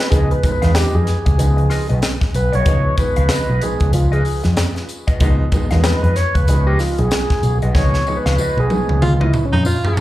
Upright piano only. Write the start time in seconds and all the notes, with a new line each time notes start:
0.12 F3 G#3 B3 D#4
0.44 F3 G#3 B3 D#4
0.62 F3 G#3 B3 D#4
1.39 F3 G#3 B3 D#4
2.66 F3 G#3 B3 D#4
2.98 F3 G#3 B3 D#4
3.62 F3 G#3 B3 D#4
5.21 F3 G#3 B3 D#4
5.53 F3 G#3 B3 D#4
5.71 D#3 G#3 B3 D#4
5.78 F3
6.48 E3 G#3 B3 D#4
6.54 F3
7.75 F3 G#3 B3 D#4
8.07 F3 G#3 B3 D#4
8.70 F3 G#3 B3 D#4